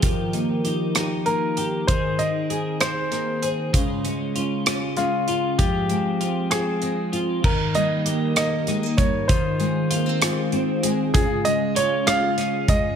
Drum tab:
CC |------|------|------|------|
HH |xxxxxx|xxxxxx|xxxxxx|xxxxxx|
SD |---r--|---rr-|---rr-|---r--|
BD |o-----|o-----|o-----|o-----|

CC |x-----|------|------|
HH |-xxxxx|xxxxxx|xxxxxx|
SD |---rr-|---r--|---rr-|
BD |o----o|o-----|o----o|